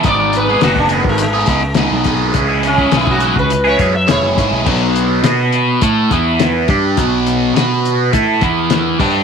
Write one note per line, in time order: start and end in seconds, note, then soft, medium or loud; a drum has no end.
0.04 0.55 G#1 loud
0.04 0.48 G#2 medium
0.04 0.48 D#3 medium
0.04 0.22 G#3 medium
0.04 0.21 B3 medium
0.04 0.20 D#4 medium
0.04 0.20 G#4 loud
0.04 0.34 D5 loud
0.04 kick loud
0.04 closed hi-hat medium
0.20 0.50 G#3 medium
0.20 0.49 B3 medium
0.20 0.48 D#4 medium
0.20 0.48 G#4 medium
0.33 0.49 B4 medium
0.33 closed hi-hat medium
0.48 0.62 G#3 medium
0.48 0.62 B3 medium
0.48 0.62 D#4 medium
0.48 0.64 G#4 medium
0.48 0.63 G#4 medium
0.61 1.01 F#1 loud
0.61 1.20 G#2 medium
0.61 1.21 D#3 loud
0.61 0.89 G#3 loud
0.61 0.90 B3 loud
0.61 0.90 D#4 loud
0.61 0.77 F#4 medium
0.61 0.92 G#4 loud
0.61 snare loud
0.61 closed hi-hat medium
0.75 0.92 D4 medium
0.75 kick medium
0.75 snare soft
0.89 1.04 G#3 medium
0.89 1.04 B3 medium
0.89 1.03 D#4 medium
0.89 1.03 G#4 medium
0.89 closed hi-hat medium
0.95 1.07 B3 medium
1.04 1.43 G#1 medium
1.04 muted overdriven electric guitar stroke soft
1.04 kick medium
1.09 1.21 G#3 loud
1.18 closed hi-hat loud
1.22 2.34 G#3 loud
1.33 1.46 G#3 medium
1.33 1.46 B3 medium
1.33 1.48 D#4 medium
1.33 1.48 G#4 medium
1.46 1.86 C#2 medium
1.46 1.61 G#3 medium
1.46 1.61 B3 medium
1.46 1.61 D#4 medium
1.46 1.61 G#4 medium
1.46 kick medium
1.46 snare soft
1.46 closed hi-hat medium
1.62 muted overdriven electric guitar stroke medium
1.74 2.33 G#2 medium
1.74 2.34 D#3 medium
1.74 2.03 G#3 medium
1.74 2.04 B3 medium
1.74 2.06 D#4 loud
1.74 snare loud
1.74 closed hi-hat medium
1.79 2.06 G#4 loud
1.91 2.30 B1 medium
2.04 2.33 G#3 medium
2.04 2.34 B3 medium
2.04 2.34 D#4 medium
2.04 2.35 G#4 medium
2.04 kick medium
2.04 closed hi-hat medium
2.34 2.86 C#2 medium
2.34 2.79 C#3 medium
2.34 2.79 G#3 loud
2.34 2.49 C#4 medium
2.34 2.48 E4 medium
2.34 2.47 G#4 loud
2.34 kick loud
2.34 closed hi-hat medium
2.48 2.79 C#4 medium
2.48 2.78 E4 medium
2.48 2.77 G#4 medium
2.63 closed hi-hat medium
2.67 2.94 C#4 loud
2.78 2.93 C#4 medium
2.78 2.93 E4 medium
2.78 2.93 G#4 medium
2.78 kick medium
2.92 3.31 B1 medium
2.92 3.51 C#3 loud
2.92 3.21 G#3 medium
2.92 3.21 C#4 medium
2.92 3.23 E4 loud
2.92 3.23 G#4 loud
2.92 snare loud
2.92 closed hi-hat medium
2.97 3.09 E4 medium
3.07 3.38 F#4 medium
3.07 kick medium
3.20 3.36 G#3 medium
3.20 3.36 C#4 medium
3.20 3.36 E4 medium
3.20 closed hi-hat medium
3.24 3.36 G#4 loud
3.36 3.75 C#2 medium
3.36 3.66 B4 medium
3.36 muted overdriven electric guitar stroke medium
3.36 kick medium
3.50 closed hi-hat medium
3.65 3.79 C#4 medium
3.65 3.80 E4 medium
3.65 3.81 G#4 medium
3.65 3.95 C#5 medium
3.79 4.05 F#2 medium
3.79 3.94 G#3 medium
3.79 3.93 C#4 medium
3.79 3.94 E4 medium
3.79 3.93 G#4 medium
3.79 kick medium
3.79 closed hi-hat medium
3.94 4.09 E5 medium
3.94 muted overdriven electric guitar stroke soft
4.08 4.22 E1 medium
4.08 4.65 C#3 medium
4.08 4.35 G#3 medium
4.08 4.36 C#4 medium
4.08 4.37 E4 medium
4.08 4.63 E4 medium
4.08 4.38 G#4 loud
4.08 4.66 C#5 medium
4.08 snare loud
4.08 closed hi-hat loud
4.23 4.36 F#1 medium
4.37 4.51 G#1 medium
4.37 4.65 G#3 medium
4.37 4.65 C#4 medium
4.37 4.66 E4 medium
4.37 4.66 G#4 medium
4.37 kick medium
4.37 closed hi-hat medium
4.51 4.65 B1 medium
4.66 5.21 B1 medium
4.66 5.24 B2 medium
4.66 5.24 F#3 loud
4.66 5.24 B3 loud
4.66 kick loud
4.66 crash loud
4.96 closed hi-hat medium
5.23 5.78 B2 medium
5.23 5.82 B3 loud
5.23 5.82 F#4 loud
5.23 5.83 B4 medium
5.23 snare loud
5.23 closed hi-hat loud
5.53 closed hi-hat medium
5.82 6.09 A2 medium
5.82 6.11 A3 medium
5.82 6.11 E4 medium
5.82 6.11 A4 loud
5.82 kick loud
5.82 closed hi-hat loud
6.11 6.65 E2 medium
6.11 6.69 E3 medium
6.11 6.69 B3 medium
6.11 6.69 E4 medium
6.11 kick loud
6.11 closed hi-hat medium
6.39 snare loud
6.39 closed hi-hat loud
6.68 6.96 G2 loud
6.68 6.97 G3 medium
6.68 6.98 D4 loud
6.68 6.97 G4 medium
6.68 kick loud
6.68 closed hi-hat medium
6.97 7.52 B1 medium
6.97 7.54 B2 medium
6.97 7.55 F#3 loud
6.97 7.54 B3 medium
6.97 kick loud
6.97 closed hi-hat loud
7.27 closed hi-hat medium
7.54 8.08 B2 medium
7.54 8.12 B3 medium
7.54 8.13 F#4 loud
7.54 8.13 B4 loud
7.54 snare loud
7.54 closed hi-hat loud
7.85 closed hi-hat medium
8.13 8.40 A2 medium
8.13 8.41 A3 medium
8.13 8.41 E4 medium
8.13 8.42 A4 loud
8.13 kick loud
8.13 closed hi-hat loud
8.41 8.95 E2 loud
8.41 8.99 E3 medium
8.41 8.99 B3 medium
8.41 9.00 E4 loud
8.41 kick loud
8.41 closed hi-hat medium
8.70 snare loud
8.70 closed hi-hat loud
8.99 9.23 G2 loud
8.99 9.23 G3 loud
8.99 9.23 D4 loud
8.99 9.23 G4 medium
8.99 kick loud
8.99 crash loud